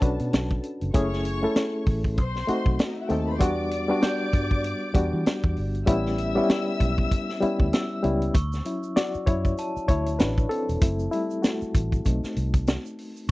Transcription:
Already playing: reed electric piano F#4 A4, string section A4 A5
0.00 fingered electric bass B1, reed electric piano C#4 D4 F#4 B4, kick, closed hi-hat
0.20 fingered electric bass B2, closed hi-hat
0.33 fingered electric bass B1, snare, closed hi-hat
0.51 kick
0.63 closed hi-hat
0.81 fingered electric bass F#1, closed hi-hat
0.94 fingered electric bass F#1, reed electric piano A3 C#4 E4 G#4, string section C#5 C#6, kick, closed hi-hat
1.13 snare
1.25 closed hi-hat
1.42 reed electric piano A3 C#4 E4 A4
1.56 snare, closed hi-hat
1.86 fingered electric bass A1, kick, open hi-hat
2.04 kick
2.18 fingered electric bass B1, string section C5 C6, kick, closed hi-hat
2.35 snare
2.47 reed electric piano A3 C4 D#4 F#4, muted fingered electric bass stroke, closed hi-hat
2.66 fingered electric bass B1, kick
2.79 snare, closed hi-hat
2.88 string section D#4 D#5
2.97 string section E4 E5
3.04 string section F#4 F#5
3.09 fingered electric bass D#2, reed electric piano A3 C4 D#4 A4, string section G4 G5, closed hi-hat
3.19 string section A4 A5
3.28 string section B4 B5
3.34 string section C5 C6
3.39 fingered electric bass E2, reed electric piano G3 B3 D4 F#4, string section D5 D6, kick, closed hi-hat
3.71 closed hi-hat
3.88 reed electric piano G3 B3 D4 F#4
4.02 glockenspiel G6, snare, closed hi-hat
4.33 fingered electric bass G2, kick, closed hi-hat
4.51 kick
4.64 closed hi-hat
4.94 fingered electric bass E2, reed electric piano G3 B3 D4 F#4, kick, closed hi-hat
5.13 fingered electric bass E3
5.26 snare, closed hi-hat
5.44 fingered electric bass E2, kick
5.57 fingered electric bass G1, open hi-hat
5.75 closed hi-hat
5.86 fingered electric bass A1, reed electric piano G3 B3 C#4 E4, string section E5 E6, kick, closed hi-hat
6.06 snare
6.18 closed hi-hat
6.35 reed electric piano G3 B3 C#4 E4
6.50 snare, closed hi-hat
6.80 fingered electric bass B1, kick, closed hi-hat
6.98 kick
7.11 kick, closed hi-hat
7.29 snare
7.41 reed electric piano G3 B3 C#4 E4, muted fingered electric bass stroke, closed hi-hat
7.60 fingered electric bass D2, kick
7.73 glockenspiel E6, snare, closed hi-hat
8.03 fingered electric bass C#2, reed electric piano G3 B3 C#4 E4, closed hi-hat
8.22 closed hi-hat
8.34 fingered electric bass D2, glockenspiel C#6, kick, closed hi-hat, shaker
8.52 snare, shaker
8.65 reed electric piano F#3 C#4 E4, closed hi-hat, shaker
8.83 shaker
8.96 reed electric piano F#4 D5, snare, closed hi-hat, shaker
9.14 muted fingered electric bass stroke, shaker
9.26 fingered electric bass F#2, reed electric piano E4 C#5, kick, closed hi-hat, shaker
9.45 kick, shaker
9.58 glockenspiel A5, closed hi-hat, shaker
9.77 muted fingered electric bass stroke, shaker
9.88 fingered electric bass D2, reed electric piano E4 C#5, kick, closed hi-hat, shaker
10.06 closed hi-hat, shaker
10.19 fingered electric bass A1, reed electric piano D4 B4, snare, closed hi-hat, shaker
10.38 kick, shaker
10.49 reed electric piano C4 A4, closed hi-hat
10.69 fingered electric bass E1, closed hi-hat, shaker
10.81 fingered electric bass F#1, reed electric piano A3 C4 E4, kick, closed hi-hat, shaker
10.99 shaker
11.11 reed electric piano G3 E4, closed hi-hat, shaker
11.30 shaker
11.42 reed electric piano A3 F#4, snare, closed hi-hat, shaker
11.61 muted fingered electric bass stroke, shaker
11.75 fingered electric bass A1, kick, closed hi-hat, shaker
11.92 kick, shaker
12.05 fingered electric bass B1, reed electric piano A3 C4 D#4, kick, closed hi-hat, shaker
12.23 muted fingered electric bass stroke, snare, shaker
12.37 fingered electric bass C2, closed hi-hat, shaker
12.54 kick, closed hi-hat, shaker
12.67 snare, closed hi-hat, shaker
12.86 shaker
12.99 open hi-hat
13.16 shaker

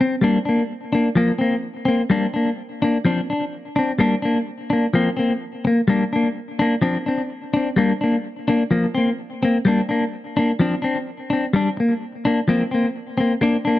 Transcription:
0.01 clean electric guitar C4
0.21 clean electric guitar G3 A#3 D4
0.45 clean electric guitar A#3 D4
0.93 clean electric guitar A#3 D4
1.15 clean electric guitar F3 A#3, muted clean electric guitar stroke
1.39 clean electric guitar A#3 C4
1.85 clean electric guitar A#3 C4
2.10 clean electric guitar G3 A#3 D4
2.34 clean electric guitar A#3 D4
2.82 clean electric guitar A#3 D4
3.05 clean electric guitar F3 C4 D4
3.30 clean electric guitar D4, muted clean electric guitar stroke
3.76 clean electric guitar C4 D4
3.99 clean electric guitar G3 A#3 D4
4.22 clean electric guitar A#3 D4
4.70 clean electric guitar A#3 D4
4.94 clean electric guitar F3 A#3 C4
5.17 clean electric guitar A#3 C4
5.65 clean electric guitar A#3, muted clean electric guitar stroke
5.88 clean electric guitar G3 A#3 D4
6.13 clean electric guitar A#3 D4
6.59 clean electric guitar A#3 D4
6.82 clean electric guitar F3 C4 D4
7.06 clean electric guitar C4 D4
7.54 clean electric guitar C4 D4
7.76 clean electric guitar G3 A#3 D4
8.01 clean electric guitar A#3 D4
8.48 clean electric guitar A#3 D4
8.71 clean electric guitar F3 A#3, muted clean electric guitar stroke
8.95 clean electric guitar A#3 C4
9.43 clean electric guitar A#3 C4
9.65 clean electric guitar G3 A#3 D4
9.89 clean electric guitar A#3 D4
10.37 clean electric guitar A#3 D4
10.59 clean electric guitar F3 C4 D4
10.82 clean electric guitar C4 D4
11.30 clean electric guitar C4 D4
11.53 clean electric guitar G3 D4, muted clean electric guitar stroke
11.77 clean electric guitar A#3, muted clean electric guitar stroke
12.25 clean electric guitar A#3 D4
12.48 clean electric guitar F3 A#3 C4
12.71 clean electric guitar A#3 C4
13.18 clean electric guitar A#3 C4
13.41 clean electric guitar A#3 D4, muted clean electric guitar stroke
13.65 clean electric guitar A#3 D4

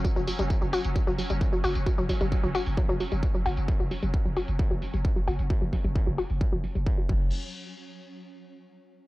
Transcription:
Already playing: synth drone F#3 C#4
0.05 synth arpeggio sound F#3, kick, closed hi-hat, tambourine
0.16 808-style bass F#1, synth arpeggio sound F#3, tambourine
0.27 synth arpeggio sound F#3, open hi-hat, tambourine
0.39 808-style bass F#1, synth arpeggio sound G3, closed hi-hat, tambourine
0.50 kick, closed hi-hat, tambourine
0.62 808-style bass F#1, synth arpeggio sound F#3, tambourine
0.73 synth arpeggio sound F#4, open hi-hat, tambourine
0.84 808-style bass F#1, closed hi-hat, tambourine
0.96 synth arpeggio sound F#3, kick, closed hi-hat, tambourine
1.07 808-style bass F#1, synth arpeggio sound F#3, tambourine
1.18 synth arpeggio sound F#3, open hi-hat, tambourine
1.30 808-style bass F#1, synth arpeggio sound G3, closed hi-hat, tambourine
1.41 kick, closed hi-hat, tambourine
1.53 synth arpeggio sound F#3, tambourine
1.64 808-style bass F#1, synth arpeggio sound F#4, open hi-hat, tambourine
1.75 808-style bass F#1, closed hi-hat, tambourine
1.86 synth arpeggio sound F#3, kick, closed hi-hat, tambourine
1.98 808-style bass F#1, synth arpeggio sound F#3, tambourine
2.09 synth arpeggio sound F#3, kick, open hi-hat, tambourine
2.21 808-style bass F#1, synth arpeggio sound G3, closed hi-hat, tambourine
2.32 kick, closed hi-hat, tambourine
2.43 808-style bass F#1, synth arpeggio sound F#3, tambourine
2.55 synth arpeggio sound F#4, open hi-hat, tambourine
2.66 808-style bass F#1, open hi-hat, tambourine
2.77 synth arpeggio sound F#3, kick, closed hi-hat, tambourine
2.89 808-style bass F#1, synth arpeggio sound F#3, tambourine
3.00 synth arpeggio sound F#3, open hi-hat, tambourine
3.12 808-style bass F#1, synth arpeggio sound G3, closed hi-hat, tambourine
3.23 kick, closed hi-hat, tambourine
3.34 synth arpeggio sound F#3, tambourine
3.46 808-style bass F#1, synth arpeggio sound F#4, open hi-hat, tambourine
3.57 808-style bass F#1, closed hi-hat, tambourine
3.68 synth arpeggio sound F#3, kick, closed hi-hat, tambourine
3.80 808-style bass F#1, synth arpeggio sound F#3, tambourine
3.91 synth arpeggio sound F#3, open hi-hat, tambourine
4.03 808-style bass F#1, synth arpeggio sound G3, closed hi-hat, tambourine
4.14 kick, closed hi-hat, tambourine
4.25 808-style bass F#1, synth arpeggio sound F#3, tambourine
4.37 synth arpeggio sound F#4, open hi-hat, tambourine
4.48 808-style bass F#1, closed hi-hat, tambourine
4.59 synth arpeggio sound F#3, kick, closed hi-hat, tambourine
4.71 808-style bass F#1, synth arpeggio sound F#3, tambourine
4.82 synth arpeggio sound F#3, open hi-hat, tambourine
4.93 808-style bass F#1, synth arpeggio sound G3, closed hi-hat, tambourine
5.05 kick, closed hi-hat, tambourine
5.16 synth arpeggio sound F#3, tambourine
5.27 808-style bass F#1, synth arpeggio sound F#4, open hi-hat, tambourine
5.39 808-style bass F#1, closed hi-hat, tambourine
5.50 synth arpeggio sound F#3, kick, closed hi-hat, tambourine
5.62 808-style bass F#1, synth arpeggio sound F#3, tambourine
5.73 synth arpeggio sound F#3, kick, open hi-hat, tambourine
5.84 808-style bass F#1, synth arpeggio sound G3, closed hi-hat, tambourine
5.96 kick, closed hi-hat, tambourine
6.07 808-style bass F#1, synth arpeggio sound F#3, tambourine
6.18 synth arpeggio sound F#4, open hi-hat, tambourine
6.30 808-style bass F#1, open hi-hat, tambourine
6.41 synth arpeggio sound F#3, kick, closed hi-hat, tambourine
6.53 808-style bass F#1, synth arpeggio sound F#3, tambourine
6.64 synth arpeggio sound F#3, open hi-hat, tambourine
6.75 808-style bass F#1, synth arpeggio sound G3, closed hi-hat, tambourine
6.87 kick, closed hi-hat, tambourine
6.98 synth arpeggio sound F#3, tambourine
7.09 808-style bass F#1, synth arpeggio sound F#3, kick, crash

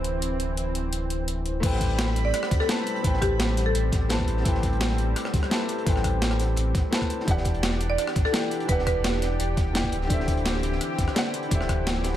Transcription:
Already playing: sub bass D1, grand piano D3 D4 E4 G4 C5, analog synth pad E3 C4
0.04 closed hi-hat
0.22 closed hi-hat
0.40 closed hi-hat
0.57 closed hi-hat
0.75 closed hi-hat
0.93 closed hi-hat
1.10 closed hi-hat
1.28 closed hi-hat
1.46 closed hi-hat
1.60 sub bass A1, analog synth pad G3 C4 B5, grand piano A3 E4 B4, kick, closed hi-hat, crash
1.65 grand piano C5 G5
1.72 snare
1.80 kick, snare, closed hi-hat
1.90 closed hi-hat
1.99 snare, closed hi-hat
2.08 snare
2.16 closed hi-hat
2.25 marimba D5
2.34 cross-stick, closed hi-hat
2.43 cross-stick, snare
2.51 sub bass D2, kick, snare, closed hi-hat
2.60 marimba A4, cross-stick, snare
2.67 grand piano A3 E4 B4 C5 A5, snare, closed hi-hat
2.87 closed hi-hat
2.96 closed hi-hat
3.01 sub bass A1, grand piano A3 E4 B4, kick, closed hi-hat
3.06 grand piano C5 G5
3.13 snare
3.22 marimba G4, kick, cross-stick, closed hi-hat
3.39 snare, closed hi-hat
3.49 snare
3.57 snare, closed hi-hat
3.66 marimba A4
3.75 sub bass A1, closed hi-hat
3.92 sub bass A1, kick, snare, closed hi-hat
4.09 grand piano A3 E4 B4 C5 A5, snare, closed hi-hat
4.19 kick
4.28 sub bass A1, closed hi-hat
4.37 snare
4.42 sub bass A1, grand piano A3 E4 B4, kick, closed hi-hat
4.47 grand piano C5 G5
4.54 snare
4.63 kick, snare, closed hi-hat
4.73 closed hi-hat
4.81 snare, closed hi-hat
4.90 snare
4.98 closed hi-hat
5.16 cross-stick, closed hi-hat
5.25 cross-stick, snare
5.34 sub bass D2, kick, snare, closed hi-hat
5.43 cross-stick, snare
5.50 grand piano A3 E4 B4 C5 A5, snare, closed hi-hat
5.68 closed hi-hat
5.78 closed hi-hat
5.84 sub bass A1, grand piano A3 E4 B4, kick, closed hi-hat
5.88 grand piano C5 G5
5.96 cross-stick, snare
6.04 kick, cross-stick, closed hi-hat
6.22 snare, closed hi-hat
6.31 cross-stick, snare
6.40 snare, closed hi-hat
6.56 sub bass A1, closed hi-hat
6.75 sub bass A1, kick, snare, closed hi-hat
6.91 grand piano A3 E4 B4 C5 A5, snare, closed hi-hat
7.01 kick, cross-stick
7.10 closed hi-hat
7.20 snare
7.25 sub bass E1, grand piano E3 E4 G4, analog synth pad D4 G4, kick, closed hi-hat
7.29 grand piano D5 F#5
7.37 snare
7.45 kick, snare, closed hi-hat
7.54 closed hi-hat
7.63 snare, closed hi-hat
7.72 snare
7.80 closed hi-hat
7.90 marimba D5
7.98 cross-stick, closed hi-hat
8.07 cross-stick, snare
8.15 sub bass A1, kick, snare, closed hi-hat
8.25 marimba A4, cross-stick, snare
8.32 grand piano E3 E4 G4 D5 G5, snare, closed hi-hat
8.51 closed hi-hat
8.60 closed hi-hat
8.66 sub bass E1, grand piano E3 E4 G4, marimba B4, kick, closed hi-hat
8.70 grand piano D5 F#5
8.79 snare
8.87 marimba B4, kick, cross-stick, closed hi-hat
9.04 snare, closed hi-hat
9.14 snare
9.22 snare, closed hi-hat
9.40 sub bass E1, closed hi-hat
9.57 sub bass E1, kick, snare, closed hi-hat
9.73 grand piano E3 E4 G4 D5 G5, snare, closed hi-hat
9.84 kick
9.92 sub bass D1, analog synth pad E3 C4, closed hi-hat
10.02 snare
10.07 sub bass D1, grand piano D3 D4 G4, kick, closed hi-hat
10.12 grand piano C5 E5
10.20 snare
10.28 kick, snare, closed hi-hat
10.37 closed hi-hat
10.46 snare, closed hi-hat
10.54 snare
10.63 closed hi-hat
10.72 snare
10.81 cross-stick, closed hi-hat
10.98 sub bass G1, kick, snare, closed hi-hat
11.08 cross-stick, snare
11.15 grand piano D3 D4 G4 C5 F#5, snare, closed hi-hat
11.34 closed hi-hat
11.43 closed hi-hat
11.49 sub bass D1, grand piano D3 D4 G4, kick, closed hi-hat
11.53 grand piano C5 E5
11.60 cross-stick, snare
11.69 kick, cross-stick, closed hi-hat
11.87 snare, closed hi-hat
11.96 snare
12.04 snare, closed hi-hat
12.13 snare

